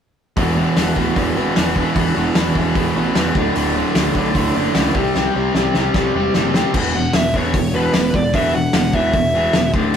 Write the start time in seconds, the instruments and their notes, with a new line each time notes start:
0.37 picked electric bass E1, distorted electric guitar E2 B2 E3, kick, open hi-hat
0.56 distorted electric guitar E2 B2 E3
0.76 picked electric bass E1, distorted electric guitar E2 B2 E3, snare, open hi-hat
0.96 picked electric bass D1, distorted electric guitar E2 B2 E3, kick
1.16 picked electric bass E1, distorted electric guitar E2 B2 E3, kick, open hi-hat
1.36 picked electric bass G#1, distorted electric guitar E2 B2 E3
1.55 picked electric bass E1, distorted electric guitar E2 B2 E3, snare, open hi-hat
1.75 distorted electric guitar E2 B2 E3, kick
1.96 picked electric bass E1, distorted electric guitar E2 B2 E3, kick, open hi-hat
2.16 picked electric bass E1, distorted electric guitar E2 B2 E3
2.35 picked electric bass E1, distorted electric guitar E2 B2 E3, snare, open hi-hat
2.55 picked electric bass E1, distorted electric guitar E2 B2 E3, kick
2.74 picked electric bass E1, distorted electric guitar E2 B2 E3, kick, open hi-hat
2.95 picked electric bass A1, distorted electric guitar E2 B2 E3
3.15 distorted electric guitar E2 B2 E3, picked electric bass E2, snare, open hi-hat
3.35 picked electric bass D1, distorted electric guitar D2 A2 D3, kick
3.54 picked electric bass D1, distorted electric guitar D2 A2 D3, open hi-hat
3.74 distorted electric guitar D2 A2 D3
3.95 picked electric bass D1, distorted electric guitar D2 A2 D3, snare, open hi-hat
4.15 picked electric bass B1, distorted electric guitar D2 A2 D3, kick
4.34 picked electric bass D1, distorted electric guitar D2 A2 D3, kick, open hi-hat
4.54 picked electric bass F#1, distorted electric guitar D2 A2 D3
4.74 picked electric bass C#2, distorted electric guitar D2 A2 D3, snare, open hi-hat
4.94 picked electric bass C2, distorted electric guitar C3 G3 C4, kick
5.14 picked electric bass C2, distorted electric guitar C3 G3 C4, snare
5.34 picked electric bass C2, distorted electric guitar C3 G3 C4
5.54 picked electric bass C2, distorted electric guitar C3 G3 C4, snare
5.74 picked electric bass C2, distorted electric guitar C3 G3 C4, snare
5.94 picked electric bass C2, distorted electric guitar C3 G3 C4, kick, snare
6.14 picked electric bass E1, distorted electric guitar C3 G3 C4
6.34 picked electric bass F#1, distorted electric guitar C3 G3 C4, snare
6.54 distorted electric guitar C3 G3 C4, snare
6.74 picked electric bass E1, distorted electric guitar E2 B2 E3, kick, crash
6.94 distorted electric guitar E2 B2, lead electric guitar F#5
7.13 picked electric bass E1, distorted electric guitar E2 B2, lead electric guitar E5, snare, open hi-hat
7.34 picked electric bass E1, distorted electric guitar E2 B2 E3, lead electric guitar C#5, kick
7.53 picked electric bass E1, distorted electric guitar E2 B2, kick, open hi-hat
7.73 distorted electric guitar E2 B2 E3, lead electric guitar B4
7.93 picked electric bass E1, distorted electric guitar E2 B2, snare, open hi-hat
8.13 picked electric bass E1, distorted electric guitar E2 B2, lead electric guitar D5, kick
8.33 picked electric bass E1, distorted electric guitar E2 B2 E3, lead electric guitar E5, kick, open hi-hat
8.53 distorted electric guitar E2 B2, lead electric guitar F#5
8.73 picked electric bass E1, distorted electric guitar E2 B2, snare, open hi-hat
8.93 picked electric bass E1, distorted electric guitar E2 B2 E3, lead electric guitar E5, kick
9.13 picked electric bass E1, distorted electric guitar E2 B2, kick, open hi-hat
9.34 distorted electric guitar E2 B2 E3
9.53 picked electric bass E1, distorted electric guitar E2 B2, snare, open hi-hat
9.74 picked electric bass D1, distorted electric guitar D2 A2 D3, kick
9.94 distorted electric guitar D2